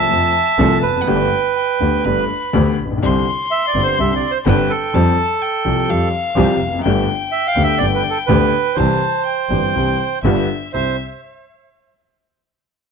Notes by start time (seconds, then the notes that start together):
Already playing: E5 A5
0.10 F2 F3 A3 C4 A4
0.58 C2 C3 F3 A3 C4 A4
0.82 F1 B4
0.90 E2
0.96 F2
1.01 F#2 F#5
1.07 G1 G2 D3 A3 B3 G4 G5
1.56 G5
1.80 D2 D3 A3 B3 G4
2.04 G1 G2 D3 A3 B3 G4 B5
2.53 D2 D3 A3 B3 G4
2.78 A#1
2.85 A1
2.91 A#1
2.97 B1
3.02 C2 C3 D3 G3 C4 G4 C6
3.51 E5
3.67 D5
3.74 G1 G2 D3 G3 C4 G4
3.83 C5
3.98 C2 C3 D3 G3 C4 G4 E5
4.16 D5
4.31 C5
4.46 G1 G2 D3 G3 C4 G4 B4 G5
4.70 A4
4.94 F2 F3 G3 C4 G4 A5
5.42 G5
5.65 C2 C3 F3 G3 C4 G4
5.89 F2 F3 G3 C4 G4 F5
6.36 C2 C3 F3 G3 C4 G4
6.59 F1
6.67 E2
6.73 F2
6.79 F#2
6.83 G1 G2 D3 A3 B3 G4 G5
7.32 E5
7.47 F5
7.56 D2 D3 A3 B3 G4
7.63 E5
7.78 G1 G2 D3 A3 B3 G4 D5
7.95 B4
8.10 A4
8.27 D2 D3 A3 B3 G4 B4
8.74 C2 C3 E3 G3 C4 G4 C5 A5
9.25 G5
9.50 G1 G2 E3 G3 C4 G4
9.74 C2 C3 E3 G3 C4 G4
10.23 G1 G2 D3 G3 B3 F4 E5
10.73 C2 G3 C4 E4 C5 E5